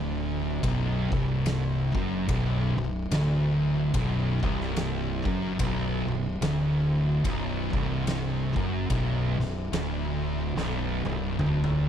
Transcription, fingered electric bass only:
Already playing: D1
0.63 B0
1.12 C1
1.94 F#1
2.29 B0
2.77 B0
3.11 D1
3.94 B0
4.43 C1
5.25 F#1
5.59 B0
6.07 B0
6.41 D1
7.25 B0
7.73 C1
8.56 F#1
8.90 B0
9.39 B0
9.73 D1
10.56 B0
11.05 C1
11.40 D1

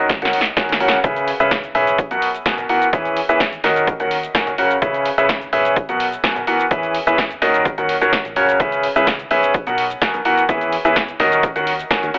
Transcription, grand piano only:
Already playing: D#3 C#4 F#4 A#4 D#5
0.22 D#3 C#4 F#4 A#4 F#5
0.57 D#3 C#4 F#4 A#4 G#5
0.80 C#3 C#4 F#4 A#4 F#5
1.04 C#3 C#4 G#4 B4 E5
1.40 C#3 C#4 G#4 B4 E5
1.75 C#4 G#4 B4 E5
2.11 B2 B3 F#4 A#4 F#5
2.46 B2 B3 F#4 A#4 G#5
2.69 E3 B3 F#4 A#4 F#5
2.93 E3 C#4 G#4 B4 E5
3.29 E3 C#4 G#4 B4 E5
3.64 D#3 C#4 F#4 A#4 D#5
4.00 D#3 C#4 F#4 A#4 F#5
4.35 D#3 C#4 F#4 A#4 G#5
4.58 C#3 C#4 F#4 A#4 F#5
4.82 C#3 C#4 G#4 B4 E5
5.18 C#3 C#4 G#4 B4 E5
5.53 C#4 G#4 B4 E5
5.89 B2 B3 F#4 A#4 F#5
6.24 B2 B3 F#4 A#4 G#5
6.47 E3 B3 F#4 A#4 F#5
6.71 E3 C#4 G#4 B4 E5
7.07 E3 C#4 G#4 B4 E5
7.42 D#3 C#4 F#4 A#4 D#5
7.78 D#3 C#4 F#4 A#4 F#5
8.01 D#3 C#4 F#4 A#4 C#5
8.36 C#3 C#4 F#4 A#4 C#5
8.60 C#3 C#4 G#4 B4 E5
8.96 C#3 C#4 G#4 B4 E5
9.31 C#4 G#4 B4 E5
9.67 B2 B3 F#4 A#4 F#5
10.02 B2 B3 F#4 A#4 G#5
10.25 E3 B3 F#4 A#4 F#5
10.49 E3 C#4 G#4 B4 E5
10.85 E3 C#4 G#4 B4 E5
11.20 D#3 C#4 F#4 A#4 D#5
11.56 D#3 C#4 F#4 A#4 F#5
11.91 D#3 C#4 F#4 A#4 G#5
12.14 C#3 C#4 F#4 A#4 F#5

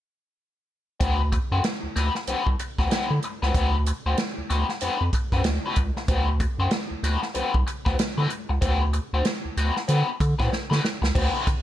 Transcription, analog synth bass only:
1.01 D2
1.52 F#2
1.83 D2
1.96 D2
2.28 C2
2.47 C2
2.79 D2
3.10 D3
3.43 C#2
3.54 D2
4.06 D2
4.38 D2
4.50 D2
4.82 F2
5.01 F2
5.32 F#2
5.44 D2
5.77 C#2
6.08 D2
6.58 F#2
6.91 D2
7.03 D2
7.35 C2
7.55 C2
7.86 D2
8.18 D3
8.50 C#2
8.62 D2
9.13 D2
9.45 D2
9.57 D2
9.89 D3
10.20 D3
10.39 A2
10.71 D3
11.02 C#2
11.15 D2
11.47 D3

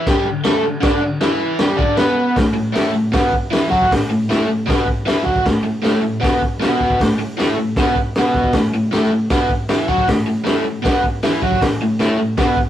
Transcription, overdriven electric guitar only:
0.08 G3 G4
0.25 D3
0.44 A3 A4
0.63 D3
0.81 D3 D4
1.02 D3
1.21 E3 E4
1.59 G3 G4
1.77 D3 D4
1.97 B3 B4
2.36 A2
2.54 A2
2.72 A2 A3
2.92 A2
3.12 B2 B3
3.33 muted overdriven electric guitar stroke
3.51 E3 E4
3.69 F#3 F#4
3.88 A2
4.10 A2
4.29 A2 A3
4.47 A2
4.66 B2 B3
4.86 muted overdriven electric guitar stroke
5.06 E3 E4
5.24 F#3 F#4
5.44 A2
5.64 A2
5.82 A2 A3
6.02 A2
6.20 B2 B3
6.41 muted overdriven electric guitar stroke
6.60 B2 B3
7.00 A2
7.19 A2
7.37 A2 A3
7.58 A2
7.79 B2 B3
7.98 muted overdriven electric guitar stroke
8.18 B2 B3
8.54 A2
8.74 A2
8.91 A2 A3
9.12 A2
9.30 B2 B3
9.51 muted overdriven electric guitar stroke
9.69 E3 E4
9.88 F#3 F#4
10.06 A2
10.27 A2
10.44 A2 A3
10.65 A2
10.82 B2 B3
11.03 muted overdriven electric guitar stroke
11.23 E3 E4
11.42 F#3 F#4
11.62 A2
11.82 A2
12.00 A2 A3
12.19 A2
12.37 B2 B3
12.57 muted overdriven electric guitar stroke

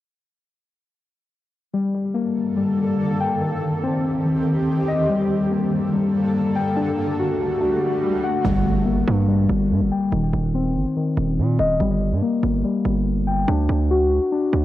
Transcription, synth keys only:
1.74 G3
1.95 G3
2.14 A#3
2.57 G3
2.77 G3
3.20 G5
3.41 D#3
3.62 D#3
3.83 C4
4.25 D#3
4.46 D#3
4.88 D#5
5.09 G3
5.30 G3
5.51 A#3
5.93 G3
6.14 G3
6.56 G5
6.77 D4
6.98 D4
7.19 F#4
7.61 D4
7.81 D4
8.24 F#5
8.45 G3
8.66 G3
8.85 A#3
9.28 G3
9.49 G3
9.92 G5
10.12 D#3
10.33 D#3
10.55 C4
10.96 D#3
11.18 D#3
11.59 D#5
11.80 G3
12.01 G3
12.22 A#3
12.64 G3
12.85 G3
13.27 G5
13.48 D4
13.70 D4
13.91 F#4
14.32 D4
14.53 D4

